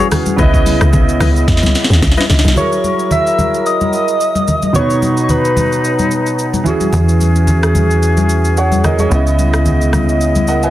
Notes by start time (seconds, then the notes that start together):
Already playing: E3 C#4 F#4 G#4 F#5
0.12 cross-stick, open hi-hat, low conga, shaker
0.26 high conga, shaker
0.36 C#2 C#3 B3 E4 B4 D#5, kick, low conga, shaker
0.42 D#5
0.54 kick, shaker
0.66 open hi-hat, high conga, shaker
0.81 C#2, cross-stick, shaker
0.93 kick, low conga, shaker
1.09 shaker
1.20 C#2 E4 B4 D#5, cross-stick, open hi-hat, high conga, low conga, shaker
1.36 shaker
1.48 E2, kick, snare, shaker
1.57 snare
1.63 C#2, snare, high conga, shaker
1.75 snare, open hi-hat, shaker
1.84 snare
1.90 D#2, snare, shaker
2.02 C#2, kick, snare, shaker
2.12 snare
2.17 E4 B4 D#5, snare, high conga, shaker
2.30 C#2, snare, open hi-hat, low conga, shaker
2.39 snare
2.44 B1, snare, high conga, shaker
2.54 F#3 E4 G#4 A#4 C#5, low conga, shaker
2.60 A#4
2.72 shaker
2.84 high conga, shaker
2.99 shaker
3.11 E5, low conga, shaker
3.27 shaker
3.39 high conga, low conga, shaker
3.54 shaker
3.66 D#5, shaker
3.81 high conga, shaker
3.93 shaker
4.08 shaker
4.21 shaker
4.35 high conga, shaker
4.48 low conga, shaker
4.62 high conga, shaker
4.73 B2 F#3 B3 D#4 C#5, low conga, shaker
4.78 B4
4.90 shaker
5.02 high conga, shaker
5.17 shaker
5.24 C#5
5.29 B4, low conga, shaker
5.45 shaker
5.57 high conga, low conga, shaker
5.72 shaker
5.84 shaker
5.99 high conga, shaker
6.11 shaker
6.26 shaker
6.39 shaker
6.53 high conga, shaker
6.64 E3 C#4 F#4 G#4, low conga, shaker
6.69 G#4
6.80 high conga, shaker
6.93 E2, low conga, shaker
7.09 shaker
7.20 high conga, shaker
7.36 shaker
7.47 low conga, shaker
7.63 cross-stick, shaker
7.75 high conga, low conga, shaker
7.91 shaker
8.03 shaker
8.17 high conga, shaker
8.29 shaker
8.45 shaker
8.57 C#5 F#5, shaker
8.72 high conga, shaker
8.84 A#4 D#5, cross-stick, low conga, shaker
8.99 G#4 C#5, high conga, shaker
9.09 C#2 C#3 B3 E4 D#5, shaker
9.15 D#5
9.27 shaker
9.39 high conga, shaker
9.54 cross-stick, shaker
9.66 low conga, shaker
9.81 shaker
9.93 cross-stick, high conga, low conga, shaker
10.09 shaker
10.21 shaker
10.35 high conga, shaker
10.47 A#4 D#5 F#5, shaker
10.63 B4 E5 G#5, shaker